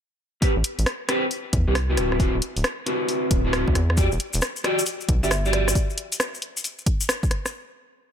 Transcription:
0.42 C4 G4 B4, kick, closed hi-hat
0.56 A1
0.64 closed hi-hat
0.79 A1, closed hi-hat
0.86 cross-stick, closed hi-hat
1.09 C4 G4 B4, cross-stick, closed hi-hat
1.31 closed hi-hat
1.53 E2, kick, closed hi-hat
1.68 C2 C4 G4 B4
1.75 cross-stick, closed hi-hat
1.89 C4 E4 F#4 B4
1.97 D1, cross-stick, closed hi-hat
2.12 cross-stick
2.19 C4 E4 F#4 B4, kick, closed hi-hat
2.34 D1
2.42 closed hi-hat
2.56 D1, closed hi-hat
2.64 cross-stick, closed hi-hat
2.86 C4 E4 F#4 B4, closed hi-hat
3.09 closed hi-hat
3.31 D1, kick, closed hi-hat
3.45 C4 E4 F#4 B4
3.53 cross-stick, closed hi-hat
3.68 D2, kick
3.75 E2, cross-stick, closed hi-hat
3.90 cross-stick
3.97 F#4 G4 D5, kick, closed hi-hat, maracas
4.12 E1, maracas
4.20 closed hi-hat
4.33 E1, closed hi-hat, maracas
4.42 cross-stick, closed hi-hat, maracas
4.56 maracas
4.64 F#4 G4 D5, cross-stick, closed hi-hat
4.79 maracas
4.86 closed hi-hat, maracas
5.01 maracas
5.09 B1, kick, closed hi-hat
5.23 G1 F#4 G4 D5 E5, maracas
5.31 E5, cross-stick, closed hi-hat, maracas
5.45 F#4 G4 D5, maracas
5.53 D5, cross-stick, closed hi-hat
5.68 D5, cross-stick, maracas
5.75 kick, closed hi-hat, maracas
5.90 maracas
5.98 closed hi-hat
6.12 closed hi-hat, maracas
6.20 cross-stick, closed hi-hat, maracas
6.34 maracas
6.42 closed hi-hat
6.57 maracas
6.64 closed hi-hat, maracas
6.79 maracas
6.86 kick, closed hi-hat
7.01 maracas
7.09 cross-stick, closed hi-hat, maracas
7.23 kick, maracas
7.31 cross-stick, closed hi-hat
7.46 cross-stick, maracas

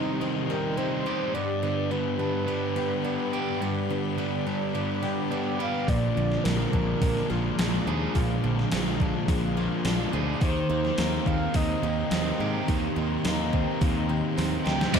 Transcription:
Already playing: C3 D#3 G3 C4 D#4 G4 D#5 C6 D#6
0.21 D#3 C4 D#4
0.49 G3 G4 A#4
0.77 C4 D#4 C5
1.06 C4 D#4 G4
1.34 G2 B3 D5 B5 D6
1.63 D3 G3 B3
1.90 G3 B3 B4
2.18 G3 D4 B4
2.46 G3 B3 D4
2.76 G3 B3 G4
3.04 B3 D4
3.33 B3 D4 G4
3.61 G2 B3
3.90 D3 G3 B3
4.18 G3 B3
4.46 G3 D4
4.74 G3 B3 D4
5.02 G3 B3 G4
5.30 B3 D4
5.59 B3 D4 G4 F5
5.87 A#1 A#2 F3 G#4 D5 F5 A#5, kick, open hi-hat
6.15 A#1 D3 F3
6.32 snare
6.44 A#1 F3 G#3 A#4, snare, open hi-hat
6.73 A#1 F3 D4, kick
6.99 A#1 F3 G#3 D4 A#4, kick, open hi-hat
7.17 snare
7.30 A#1 F3 A#3 F4
7.58 A#1 G#3 D4, snare, open hi-hat
7.86 D#2 F3 D4 G#4
8.15 A#1 A#2 F3, kick, open hi-hat
8.43 A#1 D3 F3
8.59 snare
8.71 A#1 F3 G#3, snare, open hi-hat
9.00 F3 D4, kick
9.28 A#1 F3 G#3 D4, kick, open hi-hat
9.56 F3 A#3 F4
9.85 A#1 G#3 D4, snare, open hi-hat
10.13 D2 F3 D4 G#4
10.41 D#2 D#3 G4 C5 D#5 C6, kick, open hi-hat
10.69 D#2 D#3 A#3
10.85 snare
10.98 D#2 D#3 A#3, snare, open hi-hat
11.26 D#2 D#3 C4 F5, kick
11.54 D#2 D#3 A#3 C4 D#5, kick, open hi-hat
11.83 D#2 D#3 A#3 G4
12.11 D#2 A#3 C4 D#5, snare, open hi-hat
12.39 G#2 D#3 C4 G4
12.68 D#2 D#3, kick, open hi-hat
12.96 D#2 D#3 A#3
13.25 D#2 D#3 A#3, snare, open hi-hat
13.53 D#3 C4, kick
13.81 D#2 D#3 A#3 C4, kick, open hi-hat
14.09 D#3 A#3 G4
14.36 D#2 A#3 C4, snare, open hi-hat
14.64 D2 D#3 C4 G4 G5, snare
14.81 snare
14.92 C2 C3 D#3 G3 C4 G4 D#5 A#5 C6, kick, open hi-hat, crash

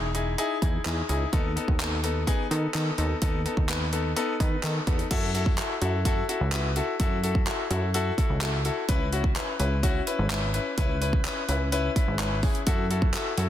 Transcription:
Already playing: E1
0.15 D#4 E4 G#4, closed hi-hat
0.38 D#4 E4 G#4, closed hi-hat
0.62 E2 D#4 E4 G#4, kick, closed hi-hat
0.85 E2 D#4 E4 G#4, clap, closed hi-hat
1.09 C#2 D#4 E4 G#4, closed hi-hat
1.33 D#2 B3 D#4 A4, kick, closed hi-hat
1.56 B3 D#4 A4, closed hi-hat
1.68 D#2, kick
1.80 B3 D#4 A4, clap, closed hi-hat
2.04 B3 D#4 A4, closed hi-hat
2.27 B3 D#4 G#4, kick, closed hi-hat
2.51 D#3 B3 D#4 A4, closed hi-hat
2.74 D#3 B3 D#4 A4, clap, closed hi-hat
2.98 D#2 B3 D#4 A4, closed hi-hat
3.22 D#2 B3 D#4 A4, kick, closed hi-hat
3.45 B3 D#4 A4, closed hi-hat
3.57 D#2, kick
3.69 B3 D#4 B4, clap, closed hi-hat
3.93 B3 D#4 A4, closed hi-hat
4.16 B3 D#4 A4, closed hi-hat
4.40 D#3 B3 D#4 B4, kick, closed hi-hat
4.63 D#3 B3 D#4 A4, clap, closed hi-hat
4.87 E2 B3 D#4 A4, kick, closed hi-hat
4.99 closed hi-hat
5.11 F#2 E4 F#4 A4, kick, closed hi-hat, crash
5.34 E4 F#4 A4, closed hi-hat
5.46 kick
5.58 E4 F#4 A4, clap, closed hi-hat
5.82 F#2 E4 F#4 A4, closed hi-hat
6.05 E4 F#4 A4, kick, closed hi-hat
6.29 E4 F#4 A4, closed hi-hat
6.41 C#2
6.52 E4 F#4 B4, clap, closed hi-hat
6.76 E4 F#4 A4, closed hi-hat
7.00 F#2 E4 F#4 A4, kick, closed hi-hat
7.23 E4 F#4 A4, closed hi-hat
7.35 kick
7.47 E4 F#4 A4, clap, closed hi-hat
7.70 F#2 E4 F#4 A4, closed hi-hat
7.94 E4 F#4 A4, closed hi-hat
8.18 E4 F#4 A4, kick, closed hi-hat
8.30 C#2
8.41 E4 F#4 A4, clap, closed hi-hat
8.65 E4 F#4 A4, closed hi-hat
8.89 C#2 C#4 E4 B4, kick, closed hi-hat
9.12 C#4 E4 F#4, closed hi-hat
9.24 kick
9.36 C#4 E4 B4, clap, closed hi-hat
9.59 C#2 C#4 E4 B4, closed hi-hat
9.83 C#4 E4 F#4, kick, closed hi-hat
10.06 C#4 E4 B4, closed hi-hat
10.19 G#1
10.30 C#4 E4 B4, clap, closed hi-hat
10.54 C#4 E4 B4, closed hi-hat
10.77 C#2 C#4 E4 B4, kick, closed hi-hat
11.01 C#4 E4 B4, closed hi-hat
11.13 kick
11.25 C#4 E4 B4, clap, closed hi-hat
11.48 C#2 C#4 E4 B4, closed hi-hat
11.72 C#4 E4 B4, closed hi-hat
11.96 C#4 E4 B4, kick, closed hi-hat
12.08 G#1
12.19 C#4 E4 B4, clap, closed hi-hat
12.43 C#4 E4 G#4, kick, open hi-hat
12.55 closed hi-hat
12.67 F#2 E4 F#4 A4, kick, closed hi-hat
12.90 E4 F#4 A4, closed hi-hat
13.02 kick
13.14 E4 F#4 A4, clap, closed hi-hat
13.37 F#2 E4 F#4 A4, closed hi-hat

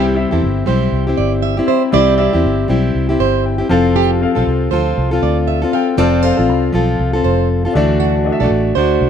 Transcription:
Already playing: C2 C3 G3 C4 E4 G4
0.14 C4 E4 G4 E5
0.31 E2 C4 E4 G4 A4
0.42 G1
0.66 B1 G3 C4 E4 G4 C5
0.92 C2
1.07 C4 E4 G4
1.17 G1 D5
1.42 E5
1.57 C4 E4 G4
1.66 C4 E4 G4 C5 E5
1.92 C2 C3 G3 C4 E4 G4 D5 E5
2.17 C4 E4 G4 D5 E5
2.33 E2 C4 E4 G4
2.44 G1
2.68 B1 G3 C4 E4 G4
2.95 C2
3.09 C4 E4 G4
3.20 G1 C5
3.46 G5
3.58 C4 E4 G4
3.69 F1 F3 C4 F4 A4 F5 A5
3.96 G4
4.21 C4 F4 A4 F5
4.35 B1 C4 F4 A4
4.47 C2
4.71 D2 F3 C4 F4 A4 C5
4.98 C2
5.11 C4 F4 A4
5.22 D2 D5
5.48 E5
5.62 C4 F4 A4
5.73 C4 F4 A4 F5 G5
5.97 F1 F3 C4 F4 A4 D5 F5
6.23 C4 F4 A4 C5 F5
6.37 A1 C4 F4 A4
6.49 C2
6.73 B1 F3 C4 F4 A4
7.00 C2
7.13 C4 F4 A4
7.24 F1 C5
7.65 C4 F4 A4
7.73 D2 D3 E3 A3 D4 F#4 A4 E5
7.77 D5
8.00 F#4
8.24 D4 F#4 A4 D#5
8.32 E5
8.40 B1 A3 D4 F#4 A4 D5
8.51 A1
8.75 D2 A3 D4 F#4 C5 D5
9.01 C2

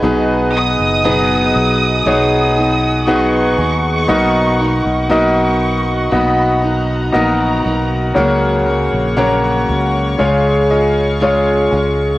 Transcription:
Already playing: G#4 B4 D#5
0.02 B1 B2 F#3 B3 D#4 F#4 G#4 B4 F#5
0.53 B3 D#4 G#4 D#6
0.79 F#1
1.04 B2 F#3 B3 D#4 F#4 G#4 B4
1.56 B1
2.05 B1 F#3 B3 D#4 F#4 G#4 C#5
2.56 B3 D#4 G#4
3.07 B2 F#3 B3 D#4 F#4 G#4 B4 C#6
3.58 D#2 B3 D#4 G#4
4.08 B1 B2 F#3 A#3 B3 D#4 F#4 A#4 D#5
4.59 A#3 D#4 F#4
4.85 B1
5.09 B2 F#3 A#3 B3 D#4 F#4 A#4 D#5 C#6
6.11 B1 F#3 A#3 B3 D#4 F#4 D#5 B5
6.62 A#3 D#4 F#4 A#5
7.12 A#1 F#3 A#3 B3 D#4 F#4 A#4 D#5
7.64 B1 A#3 D#4 F#4
8.14 C#2 C#3 F#3 A#3 C#4 F#4 A#4 C#5 C#6
8.66 A#3 C#4 F#4
8.93 A#1
9.16 C#3 F#3 A#3 C#4 F#4 A#4 C#5
9.69 C#2
10.18 C#2 C#3 G#3 C#4 F4 G#4 C#5 F5
10.70 C#4 F4 G#4 D#5
11.20 C#3 G#3 C#4 F4 G#4 C#5 F5
11.71 C#2 C#4 F4 G#4

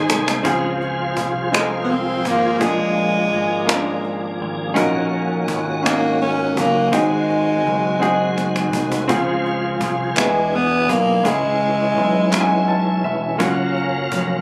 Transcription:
Already playing: G#2 D#3 G#3 D#4 G#4 C5
0.10 C2, cajon slap
0.28 cajon slap
0.43 C#2 F3 C4 C#4 F4 G#4 C5, cajon bass
0.81 cajon slap
1.17 C2, cajon bass
1.52 G#3 C4 F4 A4, cajon slap
1.61 A#4
1.84 B3
1.88 C4, cajon slap
2.25 G#1 A#3, cajon bass
2.59 A#1 A#2 F3 G#3 A#3 D4 F4 G#4, cajon bass
2.97 cajon slap
3.32 G#1, cajon slap
3.67 A#3 C#4 F4 A#4, cajon slap
3.74 D4
4.04 cajon slap
4.40 G#1, cajon slap
4.74 A#1 A#2 D#3 A#3 C#4 D#4 F#4 A#4, cajon bass
5.13 cajon slap
5.48 G#1, cajon bass
5.83 A#3 C#4 D#4 F#4 C#5, cajon slap
6.21 C#4, cajon slap
6.57 F#1 A#3, cajon bass
6.91 G#1 G#2 D#3 G#3 C4 D#4 F#4 G#4, cajon bass
7.30 cajon slap
7.66 F#1, cajon slap
8.00 C4 D#4 F#4 G#4, cajon slap
8.38 cajon slap
8.56 cajon slap
8.73 C2, cajon bass
8.92 cajon bass
9.08 C#2 F3 C4 C#4 F4 G#4 C5, cajon bass
9.46 cajon slap
9.81 C2, cajon bass
10.15 E2 B2 E3 G#3 B3 D4 E4 F#4 G#4, cajon slap, clap
10.25 G#4
10.53 B3, cajon slap
10.89 B1 A#3, cajon bass
11.23 C#2 C#3 E3 G#3 C#4 E4 G#4, cajon bass
11.28 G#3
11.61 cajon slap
11.97 B1, cajon slap
12.31 G#3 C#4 E4 F#4, cajon slap, clap
12.40 G#5
12.68 A5, cajon slap
13.04 E1 E5, cajon slap
13.38 F#1 F#3 A#3 C#4 F4 F#4 A#4 F5, cajon bass
13.76 cajon slap
14.11 F1, cajon bass

